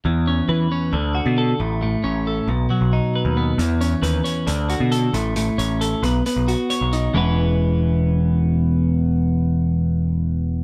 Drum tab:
HH |--------|--------|xxxxxxxx|xxxxxxxx|

HH |--------|--------|